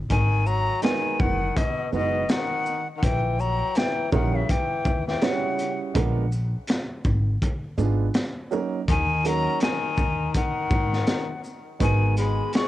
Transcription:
0.10 0.68 G#1 medium
0.10 0.48 D#3 medium
0.10 0.48 G#5 loud
0.10 kick medium
0.10 closed hi-hat medium
0.46 0.82 F#3 medium
0.46 0.83 A#5 loud
0.46 shaker medium
0.82 1.20 D#3 medium
0.82 1.36 G#3 medium
0.82 1.36 B3 medium
0.82 1.37 D#4 medium
0.82 1.37 F#4 medium
0.82 1.37 B4 medium
0.82 1.22 G#5 loud
0.82 snare loud
0.82 closed hi-hat medium
1.19 1.48 F#1 medium
1.19 1.58 D#3 medium
1.19 1.59 F#5 medium
1.19 kick medium
1.19 shaker soft
1.57 1.93 B2 medium
1.57 1.93 D#5 medium
1.57 kick medium
1.57 closed hi-hat medium
1.92 2.22 F#1 medium
1.92 2.31 B2 medium
1.92 2.20 G#3 medium
1.92 2.20 B3 medium
1.92 2.20 D#4 medium
1.92 2.21 F#4 medium
1.92 2.21 B4 medium
1.92 2.32 D#5 medium
1.92 shaker medium
2.29 2.87 D#3 medium
2.29 2.88 F#5 medium
2.29 snare loud
2.29 closed hi-hat medium
2.66 shaker medium
2.96 3.04 D#3 medium
2.96 3.05 F#5 medium
3.03 3.61 A#1 loud
3.03 3.41 E3 medium
3.03 3.42 G5 medium
3.03 kick medium
3.03 closed hi-hat medium
3.39 3.77 F#3 medium
3.39 3.79 A#5 medium
3.39 shaker medium
3.75 4.11 E3 medium
3.75 4.13 G5 medium
3.75 snare loud
3.75 closed hi-hat medium
4.12 4.41 A#1 loud
4.12 4.35 D#3 medium
4.12 4.39 G3 medium
4.12 4.40 C#4 medium
4.12 4.40 E4 medium
4.12 4.40 F#4 medium
4.12 4.40 A#4 medium
4.12 4.37 F#5 medium
4.12 kick medium
4.12 shaker soft
4.34 4.51 C#3 medium
4.34 4.52 E5 medium
4.49 5.07 E3 medium
4.49 5.08 G5 medium
4.49 kick medium
4.49 closed hi-hat medium
4.85 5.14 D#2 medium
4.85 kick medium
4.85 shaker medium
5.07 5.24 E3 medium
5.07 5.26 G5 medium
5.07 snare soft
5.21 5.80 C#3 medium
5.21 5.95 G3 medium
5.21 5.95 C#4 medium
5.21 5.95 E4 medium
5.21 5.96 F#4 medium
5.21 5.30 B4 medium
5.21 5.81 F#5 medium
5.21 snare loud
5.21 closed hi-hat medium
5.30 5.99 C#5 medium
5.59 closed hi-hat medium
5.59 shaker medium
5.94 6.53 A#1 medium
5.94 6.22 G#3 medium
5.94 6.22 B3 medium
5.94 6.22 D4 medium
5.94 6.23 F4 medium
5.94 6.23 A#4 medium
5.94 kick medium
5.94 closed hi-hat medium
6.32 shaker medium
6.68 snare loud
6.68 closed hi-hat medium
7.05 7.34 G#1 medium
7.05 kick medium
7.05 shaker soft
7.42 kick medium
7.42 closed hi-hat medium
7.78 8.07 G#1 medium
7.78 8.05 G#3 medium
7.78 8.05 B3 medium
7.78 8.06 D4 medium
7.78 8.06 F4 medium
7.78 8.06 G#4 medium
7.78 shaker medium
8.14 snare loud
8.14 closed hi-hat medium
8.51 8.78 F#3 medium
8.51 8.79 A#3 medium
8.51 8.79 C#4 medium
8.51 8.79 D#4 medium
8.51 8.79 A#4 medium
8.51 shaker medium
8.88 9.46 D#2 medium
8.88 9.27 D#3 medium
8.88 9.28 G#5 loud
8.88 kick medium
8.88 closed hi-hat medium
9.24 9.69 F#3 medium
9.24 9.62 F#3 medium
9.24 9.69 A#3 medium
9.24 9.70 C#4 soft
9.24 9.70 D#4 soft
9.24 9.70 A#4 medium
9.24 9.62 A#5 loud
9.24 closed hi-hat medium
9.24 shaker medium
9.60 10.31 D#3 medium
9.60 10.31 G#5 medium
9.60 snare loud
9.60 closed hi-hat medium
9.97 10.27 D#2 medium
9.97 kick medium
9.97 shaker medium
10.34 11.41 D#3 medium
10.34 11.41 F#5 medium
10.34 kick medium
10.34 closed hi-hat medium
10.70 11.00 G#2 medium
10.70 kick loud
10.70 shaker medium
10.93 snare soft
11.07 snare loud
11.07 closed hi-hat medium
11.44 shaker medium
11.80 12.38 G#1 medium
11.80 12.15 D#3 medium
11.80 12.68 G#3 medium
11.80 12.68 B3 medium
11.80 12.68 D#4 medium
11.80 12.68 F#4 medium
11.80 12.68 B4 medium
11.80 12.16 G#5 medium
11.80 kick medium
11.80 closed hi-hat medium
12.17 12.51 G#3 medium
12.17 12.52 B5 medium
12.17 closed hi-hat medium
12.17 shaker medium
12.53 12.68 G#3 medium
12.53 12.68 C#6 loud
12.53 snare loud
12.53 closed hi-hat medium

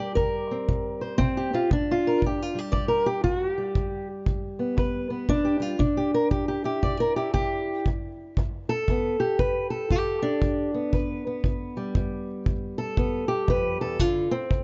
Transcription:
0.00 0.14 C3 medium
0.00 1.54 G3 soft
0.00 0.15 G4 medium
0.00 0.49 D5 medium
0.15 0.65 C3 medium
0.15 1.19 A#4 medium
0.15 kick medium
0.51 1.17 C4 soft
0.69 1.16 C3 medium
0.69 kick medium
1.01 1.69 C5 soft
1.18 1.67 C3 medium
1.18 1.51 C4 loud
1.18 kick medium
1.37 1.71 G4 medium
1.53 1.69 C4 soft
1.53 1.71 F4 medium
1.71 2.18 D2 medium
1.71 2.40 D4 medium
1.71 kick medium
1.91 2.24 F4 medium
2.07 2.23 A#4 medium
2.22 2.69 D2 medium
2.22 kick medium
2.26 2.42 G4 medium
2.42 2.58 F4 medium
2.55 3.57 G3 soft
2.55 3.05 G4 medium
2.72 3.21 D2 medium
2.72 2.88 D5 medium
2.72 kick medium
2.88 3.06 A#4 medium
3.06 3.22 G4 medium
3.24 3.72 D2 medium
3.24 3.53 F#4 loud
3.24 kick medium
3.53 4.07 G4 loud
3.58 5.29 G3 soft
3.75 4.23 G2 medium
3.75 kick medium
4.26 4.74 G2 medium
4.26 kick medium
4.59 5.09 B3 soft
4.77 5.25 G2 medium
4.77 5.78 B4 soft
4.77 kick medium
5.10 5.44 B3 medium
5.29 5.77 G2 medium
5.29 5.59 D4 loud
5.29 kick medium
5.45 5.62 G4 medium
5.60 5.79 G3 soft
5.60 5.80 F4 medium
5.79 6.27 C3 medium
5.79 6.48 D4 medium
5.79 kick medium
5.97 6.14 G4 medium
6.14 6.31 A#4 medium
6.31 6.79 C3 medium
6.31 6.47 G4 medium
6.31 kick medium
6.48 6.64 G4 medium
6.64 7.15 E4 soft
6.64 7.00 G4 medium
6.83 7.30 C3 medium
6.83 7.52 D5 medium
6.83 kick medium
7.00 7.16 A#4 medium
7.16 7.84 E4 medium
7.16 7.32 G4 medium
7.34 7.82 C3 medium
7.34 7.85 G4 loud
7.34 kick medium
7.86 8.34 G2 medium
7.86 kick medium
8.37 8.85 G2 medium
8.37 kick medium
8.69 9.39 A4 medium
8.88 9.36 G2 medium
8.88 9.19 B3 soft
8.88 kick medium
9.20 9.90 G4 medium
9.39 9.88 G2 medium
9.39 9.70 B4 medium
9.39 kick medium
9.70 10.41 A4 medium
9.91 10.38 G2 medium
9.91 10.74 G4 medium
9.91 kick medium
10.22 10.93 D4 medium
10.42 10.89 G2 medium
10.42 kick medium
10.74 11.25 B3 soft
10.93 11.40 G2 medium
10.93 11.93 B4 soft
10.93 kick medium
11.27 12.97 B3 soft
11.44 11.92 G2 medium
11.44 kick medium
11.77 14.00 G3 soft
11.95 12.43 G2 medium
11.95 kick medium
12.46 12.93 G2 medium
12.46 kick medium
12.78 13.48 A4 medium
12.97 13.45 G2 medium
12.97 13.28 B3 soft
12.97 kick medium
13.28 13.99 G4 medium
13.48 13.80 F2 medium
13.48 13.81 B4 loud
13.48 kick medium
13.81 14.00 E2 medium
13.81 14.00 A4 medium
14.00 14.47 D2 medium
14.00 14.31 D3 medium
14.00 14.32 F4 medium
14.00 kick medium
14.31 14.64 C4 medium
14.50 14.64 D2 medium
14.50 kick medium

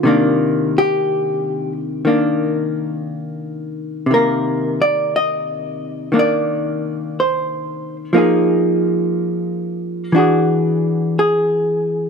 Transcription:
0.00 4.05 C3 soft
0.00 0.72 F4 medium
0.05 2.04 D#3 medium
0.05 2.06 A#3 medium
0.05 2.06 D4 medium
0.78 1.72 G4 medium
2.05 4.09 D#3 soft
2.05 4.10 A#3 soft
2.05 4.10 D4 soft
4.06 8.11 C3 soft
4.11 6.11 D#3 soft
4.11 6.12 A#3 soft
4.11 4.76 A#4 medium
4.82 5.14 D5 medium
5.16 6.10 D#5 medium
6.12 8.12 D#3 soft
6.12 8.13 A#3 soft
6.12 8.15 D4 soft
6.19 7.19 D5 medium
7.20 7.96 C5 medium
8.13 10.14 F3 soft
8.13 10.14 A#3 soft
8.13 10.15 D#4 medium
8.18 10.16 G#4 soft
10.12 12.10 E3 soft
10.12 12.10 D4 soft
10.12 12.10 F#4 soft
10.18 11.18 G#4 soft
11.19 12.10 G#4 medium

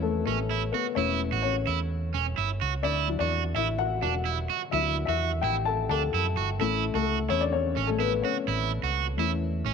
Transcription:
0.00 0.23 E2 medium
0.00 0.03 A3 soft
0.00 0.25 A3 medium
0.00 0.73 B3 medium
0.00 0.96 C#4 medium
0.00 0.95 E4 medium
0.00 0.24 A4 medium
0.00 0.72 B4 medium
0.00 0.95 C#5 loud
0.25 0.70 A1 medium
0.25 0.70 A3 medium
0.25 0.38 C#4 medium
0.25 0.74 A4 medium
0.51 0.61 E4 medium
0.72 0.95 B3 medium
0.72 0.85 F#4 medium
0.72 0.97 B4 medium
0.95 1.29 E1 medium
0.95 2.80 A3 medium
0.95 1.40 C#4 medium
0.95 2.80 E4 medium
0.95 1.19 E4 medium
0.95 1.41 C#5 medium
1.32 1.65 A1 medium
1.32 1.54 F#4 medium
1.42 2.58 C#4 medium
1.42 2.56 C#5 medium
1.67 2.11 E2 medium
1.67 1.78 E4 medium
2.14 2.36 E1 medium
2.14 2.25 C#4 medium
2.38 2.60 G1 medium
2.38 2.49 E4 medium
2.61 2.83 C#2 medium
2.61 2.72 F#4 medium
2.83 3.17 D2 medium
2.83 3.06 D4 medium
2.83 3.07 E4 loud
2.83 3.16 D5 medium
3.08 4.70 F#3 soft
3.08 3.20 D4 soft
3.08 3.55 E4 medium
3.19 3.53 E2 medium
3.19 3.53 D4 medium
3.19 3.42 F#4 medium
3.19 3.52 D5 medium
3.54 3.99 A1 medium
3.54 3.67 E4 medium
3.54 3.78 E4 medium
3.54 3.76 E5 medium
3.78 4.01 F#4 medium
3.78 4.00 F#5 loud
4.02 4.46 E1 medium
4.02 4.13 D4 medium
4.02 4.46 F#4 medium
4.02 4.46 F#5 medium
4.25 4.37 E4 medium
4.50 4.61 F#4 medium
4.71 5.06 D2 loud
4.71 5.39 F#3 medium
4.71 5.39 D4 soft
4.71 5.06 E4 medium
4.71 4.95 E4 loud
4.71 5.04 E5 medium
5.05 5.41 E2 medium
5.05 5.41 E4 medium
5.05 5.30 F#4 medium
5.05 5.43 E5 medium
5.41 5.87 A1 medium
5.41 5.55 E4 medium
5.41 5.65 G4 medium
5.41 5.66 G5 medium
5.65 5.89 A4 medium
5.65 5.88 A5 loud
5.89 6.11 D2 medium
5.89 6.01 D4 medium
5.89 6.34 A4 medium
5.89 6.33 A5 loud
6.14 6.35 F#2 medium
6.14 6.25 E4 medium
6.37 6.59 G1 medium
6.37 6.48 F#4 medium
6.59 6.93 A1 medium
6.59 6.94 A3 medium
6.59 7.27 C#4 medium
6.59 6.83 E4 loud
6.59 7.28 E4 medium
6.59 6.92 A4 medium
6.94 7.28 C#2 medium
6.94 7.28 A3 medium
6.94 7.18 F#4 medium
6.94 7.31 A4 medium
7.29 7.74 E2 medium
7.29 7.42 C#4 medium
7.29 7.41 E4 medium
7.29 7.41 C#5 medium
7.41 7.53 D4 medium
7.41 7.54 D5 medium
7.52 7.87 C#4 medium
7.52 7.89 C#5 loud
7.77 8.21 A1 medium
7.77 7.88 C#4 medium
7.87 8.00 A3 medium
7.87 8.00 A4 medium
7.99 8.23 B3 medium
7.99 8.12 E4 medium
7.99 8.24 B4 medium
8.22 9.16 C#4 medium
8.22 8.36 F#4 medium
8.22 9.74 C#5 medium
8.48 8.80 A1 loud
8.48 8.70 E4 loud
8.83 9.16 C#2 medium
8.83 9.06 F#4 medium
9.17 9.62 E2 medium
9.17 9.74 A3 soft
9.17 9.74 C#4 soft
9.17 9.74 E4 medium
9.17 9.30 E4 medium
9.65 9.74 A1 medium
9.65 9.74 C#4 medium

